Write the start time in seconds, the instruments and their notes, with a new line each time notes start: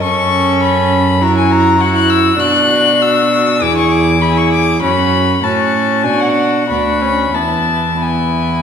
0.02 cello F#2, viola C#4, violin A4 C#6
0.62 violin B5
1.21 viola E4, violin F#4 A#5
1.37 violin G#5
1.51 violin A#5
1.80 viola E4, violin F#4 F#5
1.96 violin F#6
2.10 violin E6
2.39 cello B2, viola D4, violin F#4 F#6
3.02 violin E6
3.61 cello E2, viola E4, violin G#4 D6
3.77 violin C#6
3.92 violin D6
4.22 viola E4, violin G#4 B5
4.37 violin C#6
4.52 violin D6
4.82 cello F#2, viola C#4, violin F#4 B5
5.43 cello A2, viola C#4, violin F#4 A5
6.04 cello B2, viola D4, violin F#4 G#5
6.20 violin F#5
6.69 cello D2, viola D4, violin F#4 B5
7.02 viola C#4
7.34 cello E2, viola B3, violin E4 A5
8.01 viola B3, violin E4 G#5